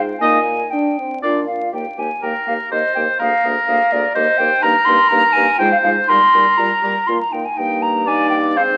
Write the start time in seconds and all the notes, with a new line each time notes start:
Already playing: G#2
0.19 A#2 A#3 D#4 D#5 G#5
0.71 D4 G5
0.98 C4
1.22 A#2 D4 F4 D5
1.47 F4 F5
1.72 D#2 A#3 G4 G5
1.97 D#2 A#3 G4 G#5
2.21 D#2 A#3 G4 A#4 G5
2.46 D#2 A#3 G4 F5
2.70 D#2 A#3 G4 C5 D#5
2.94 D#2 A#3 G4 G5
3.19 D2 A#3 G#4 A#4 F5
3.43 D2 A#3 G#4
3.67 D2 A#3 G#4 F5
3.91 D2 A#3 G#4 D5
4.14 D#2 A#3 G4 C5 D#5
4.38 D#2 A#3 G4 G5
4.62 G2 A#3 D#4 A#4 A#5
4.85 G2 A#3 D#4 C6
5.09 G2 A#3 D#4 A#5
5.33 G2 A#3 D#4 G#5
5.58 G#2 G#3 F4 C5 G5
5.72 F5
5.82 G#2 G#3 F4 F5
6.08 A#2 G3 D#4 A#4 C6
6.32 A#2 G3 D#4
6.57 A#2 G3 F4 A#5
6.82 A#2 G3 G4
7.07 A#2 A#3 F4 C6
7.21 A#5
7.30 A#2 A#3 D#4 G5
7.45 G#5
7.55 G2 A#3 D#4 G5
7.82 A#5
8.06 A#3 D#4 D5 G#5
8.30 G5
8.56 G#2 C4 C5 F5